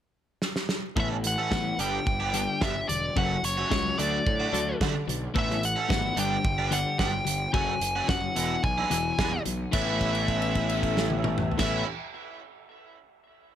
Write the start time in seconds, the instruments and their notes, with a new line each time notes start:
0.42 snare
0.56 snare
0.69 snare
0.96 picked electric bass A1, clean electric guitar A2 E3 B3, overdriven electric guitar E3 A3 C#4 A4, lead electric guitar E5, kick
1.24 clean electric guitar A2 E3, lead electric guitar F#5, closed hi-hat
1.38 overdriven electric guitar E3 A3 C#4 A4
1.51 picked electric bass A1, clean electric guitar A2 E3 B3, muted overdriven electric guitar stroke, kick, snare
1.79 picked electric bass G1, clean electric guitar G2 D3 G3, overdriven electric guitar G3 B3 D4 G4, lead electric guitar G5, closed hi-hat
2.06 picked electric bass G1, clean electric guitar G2 D3, kick
2.20 overdriven electric guitar G3 B3 D4 G4
2.34 clean electric guitar G2 D3 G3, closed hi-hat
2.61 picked electric bass G1, clean electric guitar G2, overdriven electric guitar G3 B3 D4 G4, lead electric guitar E5, kick, snare
2.76 muted overdriven electric guitar stroke
2.89 picked electric bass E1, clean electric guitar G2 D3, lead electric guitar D5, closed hi-hat
3.16 picked electric bass F#1, clean electric guitar F#2 C#3 F#3, overdriven electric guitar F#3 A3 C#4 F#4, lead electric guitar F#5, kick
3.43 picked electric bass F#1, clean electric guitar F#2 C#3, lead electric guitar C#5, closed hi-hat
3.57 overdriven electric guitar F#3 A3 C#4 F#4
3.70 picked electric bass C#2, clean electric guitar F#2 C#3 F#3, muted overdriven electric guitar stroke, kick, snare
3.98 picked electric bass D2, overdriven electric guitar D3 A3 D4 F#4, clean electric guitar D3 F#3 A3, lead electric guitar D5, closed hi-hat
4.26 picked electric bass A2, clean electric guitar D3 F#3, kick
4.40 overdriven electric guitar D3 A3 D4 F#4
4.53 picked electric bass D2, clean electric guitar D3 F#3 A3, closed hi-hat
4.80 clean electric guitar D3, picked electric bass D3, overdriven electric guitar D3 A3 D4 F#4, kick, snare
4.95 muted overdriven electric guitar stroke
5.08 picked electric bass B1, clean electric guitar D3 F#3, closed hi-hat
5.34 picked electric bass A1, clean electric guitar A2 E3 B3, overdriven electric guitar E3 A3 C#4 A4, kick
5.38 lead electric guitar E5
5.50 snare
5.62 clean electric guitar A2 E3, lead electric guitar F#5, closed hi-hat
5.76 overdriven electric guitar E3 A3 C#4 A4
5.89 picked electric bass G#1, clean electric guitar A2 E3 B3, muted overdriven electric guitar stroke, kick, snare
6.17 picked electric bass G1, clean electric guitar G2 D3 G3, overdriven electric guitar G3 B3 D4 G4, lead electric guitar G5, closed hi-hat
6.45 picked electric bass G1, clean electric guitar G2 D3, kick
6.58 overdriven electric guitar G3 B3 D4 G4
6.71 clean electric guitar G2 D3 G3, lead electric guitar F#5, closed hi-hat
6.98 picked electric bass G1, clean electric guitar G2 D3, overdriven electric guitar G3 B3 D4 G4, lead electric guitar G5, kick, snare
7.13 muted overdriven electric guitar stroke
7.25 picked electric bass G1, clean electric guitar G2 D3, closed hi-hat
7.53 picked electric bass F#1, clean electric guitar F#2 C#3 F#3, overdriven electric guitar F#3 A3 C#4 F#4, lead electric guitar G#5, kick
7.80 picked electric bass F#1, clean electric guitar F#2 C#3, closed hi-hat
7.96 overdriven electric guitar F#3 A3 C#4 F#4
8.08 picked electric bass F#1, clean electric guitar F#2 C#3 F#3, lead electric guitar F#5, muted overdriven electric guitar stroke, kick, snare
8.35 picked electric bass E1, clean electric guitar E2 B2 E3, overdriven electric guitar E3 G#3 D4 E4, closed hi-hat
8.64 picked electric bass B1, clean electric guitar E2, lead electric guitar G#5, kick
8.78 overdriven electric guitar E3 G#3 D4 E4
8.90 picked electric bass E1, clean electric guitar E2 B2 E3, closed hi-hat
9.19 picked electric bass E2, overdriven electric guitar E3 G#3 D4 E4, kick, snare
9.32 muted overdriven electric guitar stroke
9.45 picked electric bass B1, clean electric guitar E2 B2, closed hi-hat
9.72 picked electric bass A1, clean electric guitar A2 E3 B3 C#4, overdriven electric guitar A2 E3 A3, lead electric guitar E5, kick, crash
9.76 overdriven electric guitar C#4 E4, clean electric guitar E4
10.01 kick, crash
10.15 crash
10.28 kick, crash
10.42 crash
10.55 kick, crash
10.69 crash
10.83 kick, crash
10.97 snare
11.10 high tom
11.24 mid tom
11.38 mid tom
11.51 floor tom
11.58 picked electric bass A1, clean electric guitar A2 E3 B3 C#4 E4, overdriven electric guitar A2 E3 A3 C#4, lead electric guitar E5, kick, snare, crash
11.62 overdriven electric guitar E4